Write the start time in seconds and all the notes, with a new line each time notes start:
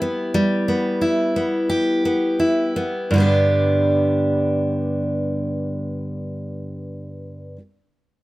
Already playing: G3 E4 G4
0.02 B3
0.34 G3
0.68 B3
1.01 E4
1.36 B3
1.69 G4
2.05 B3
2.40 E4
2.76 B3
3.11 G2 D3
3.16 G3 B3
3.20 D4 G4